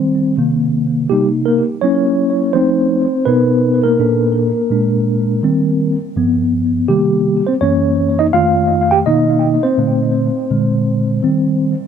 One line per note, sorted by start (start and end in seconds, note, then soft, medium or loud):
0.00 0.34 D#3 medium
0.00 0.35 G3 medium
0.00 0.35 C4 medium
0.00 0.34 C5 medium
0.37 1.07 C3 medium
0.37 1.07 D#3 medium
0.37 1.07 A#3 medium
1.10 1.61 C3 medium
1.10 1.28 G3 medium
1.10 1.47 A#3 soft
1.10 1.62 D#4 medium
1.10 1.26 G4 medium
1.46 1.64 A#3 medium
1.46 1.62 A#4 medium
1.81 2.51 F#3 medium
1.81 2.52 A#3 soft
1.81 2.52 C#4 medium
1.81 2.52 E4 medium
1.81 2.57 C#5 medium
2.53 3.05 F3 medium
2.53 3.06 A3 medium
2.53 3.24 C4 medium
2.53 3.06 D#4 medium
2.53 3.29 C5 loud
3.25 3.96 B2 medium
3.25 3.82 B3 medium
3.25 3.96 D#4 medium
3.25 3.82 A#4 soft
3.25 3.80 B4 medium
3.83 5.98 A#3 medium
3.83 5.97 A#4 medium
3.99 4.50 A#2 medium
3.99 4.51 D4 medium
3.99 4.50 A4 medium
4.70 5.40 A#2 medium
4.70 5.40 G#3 soft
4.70 5.41 D4 medium
5.43 5.95 D#3 medium
5.43 5.95 G3 medium
5.43 5.95 C4 medium
6.16 6.85 G2 medium
6.16 6.85 F3 medium
6.16 6.86 B3 medium
6.88 7.40 C3 medium
6.88 7.40 D#3 medium
6.88 7.43 G3 medium
6.88 7.40 A#3 medium
6.88 7.43 G4 medium
7.47 7.54 C4 medium
7.47 7.53 C5 medium
7.61 8.30 F#2 medium
7.61 8.30 E3 soft
7.61 8.30 A#3 medium
7.61 8.16 C#4 medium
7.61 8.21 C#5 medium
8.19 8.26 D#4 medium
8.19 8.25 D#5 loud
8.33 9.02 F2 medium
8.33 9.02 D#3 medium
8.33 9.02 A3 medium
8.33 8.88 F4 medium
8.33 8.93 F5 loud
8.91 8.98 G4 medium
8.91 8.98 G5 medium
9.06 9.57 B2 medium
9.06 9.57 D#3 soft
9.06 9.57 A#3 medium
9.06 9.60 D#4 medium
9.06 9.66 D#5 medium
9.63 11.23 C4 medium
9.63 11.76 C5 medium
9.78 10.29 A#2 medium
9.78 10.29 D3 soft
9.78 10.29 A3 medium
10.50 11.19 A#2 medium
10.50 11.19 D3 soft
10.50 11.19 G#3 medium
11.23 11.74 D#3 medium
11.23 11.74 G3 medium
11.23 11.74 C4 medium